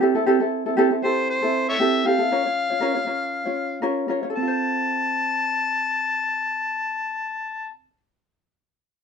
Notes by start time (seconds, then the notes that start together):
0.01 C4 E4 G4 A4
0.15 C4 E4 A4
0.26 C4 E4 G4 A4
0.40 C4 E4 A4
0.66 C4 E4 A4
0.77 C4 E4 G4 A4
0.91 C4 E4 A4
1.03 C4 E4 G4 A4 C5
1.30 C5
1.42 C4 E4 A4
1.69 A4 C#5 E5
1.79 C4 E4 G4 A4
2.05 C4 E4 G4 A4 F5
2.19 C4 E4 A4
2.31 C#4 F4 A#4 C#5
2.45 C#4 F4 C#5
2.70 C#4 F4 C#5
2.81 C#4 F4 A#4 C#5
2.95 C#4 F4 C#5
3.06 C#4 F4 A#4 C#5
3.45 C#4 F4 C#5
3.82 C#4 F4 A#4 C#5
4.08 C#4 F4 A#4 C#5
4.23 C#4 F4 C#5
4.30 A4
4.36 C4 A5
4.42 F4
4.47 C5